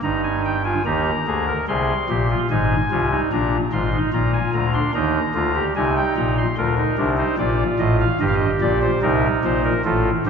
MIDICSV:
0, 0, Header, 1, 2, 480
1, 0, Start_track
1, 0, Key_signature, -3, "major"
1, 0, Tempo, 818554
1, 18, Time_signature, 4, 2, 24, 8
1, 6038, End_track
2, 0, Start_track
2, 0, Title_t, "Pipe organ"
2, 0, Program_c, 0, 19
2, 15, Note_on_c, 0, 31, 62
2, 16, Note_on_c, 0, 82, 70
2, 17, Note_on_c, 0, 43, 67
2, 17, Note_on_c, 0, 63, 83
2, 121, Note_off_c, 0, 82, 0
2, 139, Note_on_c, 0, 80, 67
2, 244, Note_off_c, 0, 80, 0
2, 262, Note_on_c, 0, 79, 67
2, 330, Note_off_c, 0, 63, 0
2, 366, Note_off_c, 0, 79, 0
2, 379, Note_on_c, 0, 65, 69
2, 381, Note_on_c, 0, 80, 63
2, 433, Note_off_c, 0, 31, 0
2, 434, Note_off_c, 0, 43, 0
2, 484, Note_off_c, 0, 65, 0
2, 485, Note_off_c, 0, 80, 0
2, 500, Note_on_c, 0, 51, 64
2, 501, Note_on_c, 0, 39, 65
2, 501, Note_on_c, 0, 67, 80
2, 501, Note_on_c, 0, 82, 64
2, 650, Note_off_c, 0, 51, 0
2, 651, Note_off_c, 0, 39, 0
2, 651, Note_off_c, 0, 67, 0
2, 744, Note_on_c, 0, 38, 64
2, 745, Note_on_c, 0, 50, 66
2, 745, Note_on_c, 0, 68, 77
2, 848, Note_off_c, 0, 68, 0
2, 865, Note_on_c, 0, 70, 83
2, 893, Note_off_c, 0, 38, 0
2, 893, Note_off_c, 0, 50, 0
2, 916, Note_off_c, 0, 82, 0
2, 968, Note_off_c, 0, 70, 0
2, 983, Note_on_c, 0, 68, 83
2, 984, Note_on_c, 0, 48, 67
2, 985, Note_on_c, 0, 36, 67
2, 985, Note_on_c, 0, 84, 70
2, 1132, Note_off_c, 0, 68, 0
2, 1133, Note_off_c, 0, 48, 0
2, 1134, Note_off_c, 0, 36, 0
2, 1227, Note_on_c, 0, 46, 72
2, 1227, Note_on_c, 0, 67, 83
2, 1228, Note_on_c, 0, 34, 73
2, 1329, Note_off_c, 0, 67, 0
2, 1349, Note_on_c, 0, 65, 82
2, 1375, Note_off_c, 0, 46, 0
2, 1376, Note_off_c, 0, 34, 0
2, 1398, Note_off_c, 0, 84, 0
2, 1451, Note_off_c, 0, 65, 0
2, 1468, Note_on_c, 0, 63, 79
2, 1469, Note_on_c, 0, 32, 66
2, 1469, Note_on_c, 0, 44, 68
2, 1470, Note_on_c, 0, 80, 76
2, 1616, Note_off_c, 0, 63, 0
2, 1617, Note_off_c, 0, 32, 0
2, 1617, Note_off_c, 0, 44, 0
2, 1705, Note_on_c, 0, 48, 61
2, 1706, Note_on_c, 0, 65, 84
2, 1707, Note_on_c, 0, 36, 67
2, 1809, Note_off_c, 0, 65, 0
2, 1825, Note_on_c, 0, 63, 79
2, 1854, Note_off_c, 0, 48, 0
2, 1856, Note_off_c, 0, 36, 0
2, 1882, Note_off_c, 0, 80, 0
2, 1928, Note_off_c, 0, 63, 0
2, 1949, Note_on_c, 0, 62, 80
2, 1949, Note_on_c, 0, 82, 73
2, 1950, Note_on_c, 0, 46, 69
2, 1951, Note_on_c, 0, 34, 70
2, 2096, Note_off_c, 0, 62, 0
2, 2096, Note_off_c, 0, 82, 0
2, 2097, Note_off_c, 0, 46, 0
2, 2098, Note_off_c, 0, 34, 0
2, 2184, Note_on_c, 0, 84, 70
2, 2186, Note_on_c, 0, 32, 67
2, 2186, Note_on_c, 0, 44, 66
2, 2186, Note_on_c, 0, 65, 81
2, 2288, Note_off_c, 0, 65, 0
2, 2303, Note_on_c, 0, 63, 77
2, 2332, Note_off_c, 0, 84, 0
2, 2334, Note_off_c, 0, 32, 0
2, 2334, Note_off_c, 0, 44, 0
2, 2407, Note_off_c, 0, 63, 0
2, 2424, Note_on_c, 0, 34, 72
2, 2424, Note_on_c, 0, 82, 70
2, 2425, Note_on_c, 0, 46, 66
2, 2425, Note_on_c, 0, 65, 85
2, 2527, Note_off_c, 0, 82, 0
2, 2539, Note_on_c, 0, 80, 71
2, 2571, Note_off_c, 0, 34, 0
2, 2572, Note_off_c, 0, 46, 0
2, 2643, Note_off_c, 0, 80, 0
2, 2660, Note_on_c, 0, 82, 71
2, 2661, Note_on_c, 0, 38, 68
2, 2661, Note_on_c, 0, 50, 67
2, 2732, Note_off_c, 0, 65, 0
2, 2764, Note_off_c, 0, 82, 0
2, 2778, Note_on_c, 0, 84, 78
2, 2779, Note_on_c, 0, 62, 81
2, 2809, Note_off_c, 0, 38, 0
2, 2809, Note_off_c, 0, 50, 0
2, 2882, Note_off_c, 0, 84, 0
2, 2883, Note_off_c, 0, 62, 0
2, 2897, Note_on_c, 0, 39, 73
2, 2898, Note_on_c, 0, 51, 68
2, 2898, Note_on_c, 0, 63, 88
2, 2898, Note_on_c, 0, 82, 76
2, 3046, Note_off_c, 0, 39, 0
2, 3047, Note_off_c, 0, 51, 0
2, 3047, Note_off_c, 0, 63, 0
2, 3133, Note_on_c, 0, 38, 70
2, 3133, Note_on_c, 0, 50, 68
2, 3134, Note_on_c, 0, 65, 88
2, 3239, Note_off_c, 0, 65, 0
2, 3253, Note_on_c, 0, 67, 83
2, 3283, Note_off_c, 0, 38, 0
2, 3283, Note_off_c, 0, 50, 0
2, 3309, Note_off_c, 0, 82, 0
2, 3358, Note_off_c, 0, 67, 0
2, 3376, Note_on_c, 0, 36, 74
2, 3376, Note_on_c, 0, 63, 87
2, 3376, Note_on_c, 0, 80, 74
2, 3377, Note_on_c, 0, 48, 69
2, 3480, Note_off_c, 0, 80, 0
2, 3496, Note_on_c, 0, 79, 74
2, 3524, Note_off_c, 0, 36, 0
2, 3525, Note_off_c, 0, 48, 0
2, 3599, Note_off_c, 0, 79, 0
2, 3619, Note_on_c, 0, 34, 73
2, 3620, Note_on_c, 0, 46, 69
2, 3620, Note_on_c, 0, 82, 75
2, 3721, Note_off_c, 0, 82, 0
2, 3739, Note_on_c, 0, 84, 74
2, 3766, Note_off_c, 0, 34, 0
2, 3767, Note_off_c, 0, 46, 0
2, 3787, Note_off_c, 0, 63, 0
2, 3840, Note_off_c, 0, 84, 0
2, 3853, Note_on_c, 0, 38, 75
2, 3853, Note_on_c, 0, 65, 73
2, 3854, Note_on_c, 0, 50, 76
2, 3854, Note_on_c, 0, 70, 84
2, 3957, Note_off_c, 0, 65, 0
2, 3974, Note_on_c, 0, 63, 67
2, 4002, Note_off_c, 0, 38, 0
2, 4003, Note_off_c, 0, 50, 0
2, 4077, Note_off_c, 0, 63, 0
2, 4090, Note_on_c, 0, 62, 67
2, 4091, Note_on_c, 0, 36, 65
2, 4093, Note_on_c, 0, 48, 70
2, 4164, Note_off_c, 0, 70, 0
2, 4195, Note_off_c, 0, 62, 0
2, 4206, Note_on_c, 0, 72, 85
2, 4207, Note_on_c, 0, 63, 71
2, 4240, Note_off_c, 0, 36, 0
2, 4242, Note_off_c, 0, 48, 0
2, 4313, Note_off_c, 0, 63, 0
2, 4313, Note_off_c, 0, 72, 0
2, 4327, Note_on_c, 0, 46, 72
2, 4328, Note_on_c, 0, 74, 87
2, 4329, Note_on_c, 0, 65, 76
2, 4330, Note_on_c, 0, 34, 70
2, 4477, Note_off_c, 0, 46, 0
2, 4478, Note_off_c, 0, 74, 0
2, 4479, Note_off_c, 0, 34, 0
2, 4568, Note_on_c, 0, 33, 68
2, 4568, Note_on_c, 0, 45, 72
2, 4569, Note_on_c, 0, 75, 90
2, 4673, Note_off_c, 0, 75, 0
2, 4691, Note_on_c, 0, 77, 93
2, 4717, Note_off_c, 0, 33, 0
2, 4717, Note_off_c, 0, 45, 0
2, 4741, Note_off_c, 0, 65, 0
2, 4794, Note_off_c, 0, 77, 0
2, 4810, Note_on_c, 0, 75, 92
2, 4811, Note_on_c, 0, 31, 75
2, 4811, Note_on_c, 0, 43, 75
2, 4813, Note_on_c, 0, 67, 78
2, 4835, Note_off_c, 0, 75, 0
2, 4853, Note_on_c, 0, 77, 75
2, 4893, Note_off_c, 0, 77, 0
2, 4893, Note_on_c, 0, 75, 91
2, 4959, Note_off_c, 0, 31, 0
2, 4959, Note_off_c, 0, 43, 0
2, 4990, Note_off_c, 0, 75, 0
2, 5049, Note_on_c, 0, 46, 81
2, 5051, Note_on_c, 0, 34, 77
2, 5053, Note_on_c, 0, 74, 94
2, 5154, Note_off_c, 0, 74, 0
2, 5169, Note_on_c, 0, 72, 91
2, 5198, Note_off_c, 0, 46, 0
2, 5200, Note_off_c, 0, 34, 0
2, 5224, Note_off_c, 0, 67, 0
2, 5272, Note_off_c, 0, 72, 0
2, 5288, Note_on_c, 0, 48, 82
2, 5289, Note_on_c, 0, 70, 94
2, 5290, Note_on_c, 0, 36, 81
2, 5290, Note_on_c, 0, 63, 84
2, 5438, Note_off_c, 0, 48, 0
2, 5439, Note_off_c, 0, 70, 0
2, 5440, Note_off_c, 0, 36, 0
2, 5538, Note_on_c, 0, 72, 85
2, 5539, Note_on_c, 0, 34, 72
2, 5539, Note_on_c, 0, 46, 73
2, 5639, Note_off_c, 0, 72, 0
2, 5654, Note_on_c, 0, 70, 88
2, 5686, Note_off_c, 0, 34, 0
2, 5686, Note_off_c, 0, 46, 0
2, 5705, Note_off_c, 0, 63, 0
2, 5757, Note_off_c, 0, 70, 0
2, 5774, Note_on_c, 0, 65, 83
2, 5775, Note_on_c, 0, 69, 92
2, 5776, Note_on_c, 0, 33, 78
2, 5776, Note_on_c, 0, 45, 81
2, 5923, Note_off_c, 0, 65, 0
2, 5923, Note_off_c, 0, 69, 0
2, 5924, Note_off_c, 0, 33, 0
2, 5924, Note_off_c, 0, 45, 0
2, 6017, Note_on_c, 0, 43, 69
2, 6018, Note_on_c, 0, 67, 75
2, 6019, Note_on_c, 0, 31, 75
2, 6019, Note_on_c, 0, 72, 91
2, 6038, Note_off_c, 0, 31, 0
2, 6038, Note_off_c, 0, 43, 0
2, 6038, Note_off_c, 0, 67, 0
2, 6038, Note_off_c, 0, 72, 0
2, 6038, End_track
0, 0, End_of_file